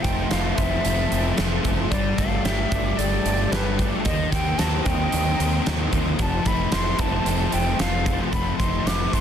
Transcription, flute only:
0.03 0.31 G5 medium
0.30 0.57 F5 medium
0.56 1.64 E5 medium
1.90 2.19 D5 loud
2.18 2.46 F5 medium
2.44 2.99 E5 medium
2.98 3.53 D5 medium
3.52 3.92 B4 medium
4.05 4.30 D#5 loud
4.33 4.60 G5 loud
4.59 4.87 A5 loud
4.85 5.93 G5 medium
6.21 6.49 A5 loud
6.47 6.75 B5 medium
6.73 7.01 C6 loud
7.00 7.54 A5 medium
7.53 7.82 G5 medium
7.80 8.20 F5 medium
8.33 8.58 B5 loud
8.58 8.88 C6 loud
8.87 9.15 D6 loud
9.14 9.21 C6 loud

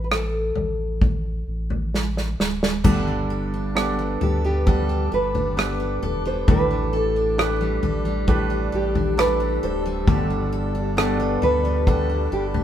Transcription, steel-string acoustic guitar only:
2.84 4.66 G3 medium
2.84 3.30 A4 medium
3.08 3.53 D4 soft
3.30 3.76 A4 medium
3.54 4.89 D4 soft
3.76 4.21 A4 medium
3.99 4.43 B3 medium
4.21 4.67 A4 medium
4.45 5.79 B3 soft
4.67 6.96 G3 medium
4.67 5.11 A4 medium
4.89 5.34 D4 soft
5.12 5.57 A4 medium
5.35 6.70 D4 soft
5.57 6.02 A4 medium
5.80 6.24 B3 medium
6.03 6.48 A4 medium
6.25 6.57 B3 medium
6.48 8.26 A2 medium
6.48 6.93 A4 medium
6.71 7.16 D4 soft
6.93 7.38 A4 medium
7.16 8.50 D4 medium
7.38 7.82 A4 medium
7.61 8.05 G3 medium
7.83 8.28 A4 medium
8.05 9.40 G3 soft
8.28 10.17 A2 medium
8.28 8.72 A4 medium
8.50 8.95 D4 medium
8.72 9.17 A4 medium
8.95 10.30 D4 soft
9.17 9.63 A4 medium
9.40 9.85 G3 soft
9.63 10.08 A4 medium
9.86 10.08 G3 medium
10.08 11.87 G3 medium
10.08 10.52 A4 medium
10.30 10.74 D4 soft
10.53 10.96 A4 medium
10.75 12.09 D4 medium
10.97 11.42 A4 medium
11.20 11.64 B3 medium
11.42 11.88 A4 medium
11.65 12.64 B3 soft
11.87 12.64 G3 medium
11.87 12.32 A4 medium
12.10 12.54 D4 soft
12.32 12.64 A4 medium
12.54 12.64 D4 medium

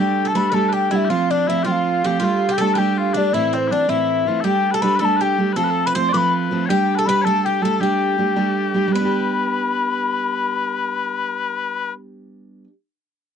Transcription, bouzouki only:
0.00 0.25 G4 medium
0.25 0.34 A4 medium
0.35 0.51 B4 medium
0.52 0.72 A4 medium
0.73 0.90 G4 medium
0.91 1.09 E4 medium
1.10 1.29 F4 medium
1.31 1.47 D4 medium
1.50 1.64 E4 medium
1.65 2.04 F4 medium
2.04 2.19 G4 medium
2.20 2.48 F4 medium
2.49 2.58 G4 medium
2.58 2.75 A4 loud
2.75 3.12 G4 medium
3.14 3.31 D4 medium
3.34 3.55 E4 medium
3.53 3.70 C4 medium
3.72 3.88 D4 medium
3.89 4.44 E4 medium
4.44 4.74 G4 medium
4.74 4.82 A4 loud
4.82 4.99 B4 medium
4.99 5.19 A4 medium
5.21 5.38 G4 medium
5.56 5.84 A4 medium
5.87 5.95 B4 loud
5.95 6.12 C5 loud
6.14 6.33 B4 medium
6.70 6.97 G4 medium
6.99 7.07 A4 medium
7.09 7.24 B4 loud
7.27 7.45 A4 medium
7.46 7.62 G4 medium
7.65 7.82 A4 medium
7.83 8.72 G4 medium
8.95 12.64 B4 medium

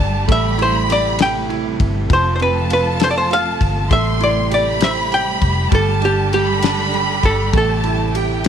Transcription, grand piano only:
0.00 0.30 G3 medium
0.00 0.30 D4 medium
0.00 0.25 G4 medium
0.28 1.17 A3 medium
0.58 1.48 E4 medium
0.88 2.06 G4 medium
1.19 2.07 A3 medium
1.49 2.08 E4 medium
2.10 3.87 F3 medium
2.41 3.58 C4 medium
2.71 3.29 F4 medium
3.00 3.88 A4 medium
3.31 3.89 F4 medium
3.91 5.68 A3 medium
4.21 5.38 E4 medium
4.51 5.10 G4 medium
4.81 5.69 C5 medium
5.12 5.70 G4 medium
5.71 6.32 G3 medium
6.02 6.62 D4 medium
6.34 6.92 G3 medium
6.63 7.51 D4 medium
6.93 7.52 G3 medium
7.53 8.43 A3 medium
7.84 8.48 E4 medium
8.15 8.48 G4 medium
8.45 8.48 A3 medium

